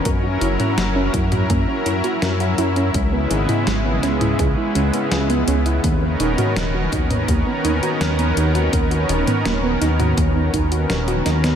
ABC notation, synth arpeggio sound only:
X:1
M:4/4
L:1/16
Q:1/4=83
K:B
V:1 name="Synth arpeggio sound"
A F E C A, C E F A, C E F A F E C | G, B, C E G, B, C E G E C B, G, B, C E | A, B, D F A F D B, A, B, D F A, B, D F | A F D B, A, B, D F A, B, D F A F D B, |]